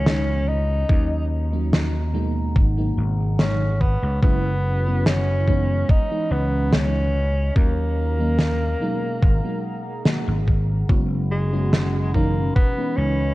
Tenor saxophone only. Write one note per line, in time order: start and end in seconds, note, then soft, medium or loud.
0.00 0.49 C#4 loud
0.48 1.31 D#4 loud
3.39 3.83 C#4 loud
3.81 4.22 B3 medium
4.23 5.02 B3 loud
5.07 5.92 C#4 loud
5.90 6.33 D#4 loud
6.32 6.75 B3 loud
6.74 7.56 C#4 loud
7.57 10.44 A#3 loud
11.31 12.10 G#3 medium
12.14 12.53 A#3 medium
12.56 12.98 B3 loud
12.97 13.34 C#4 loud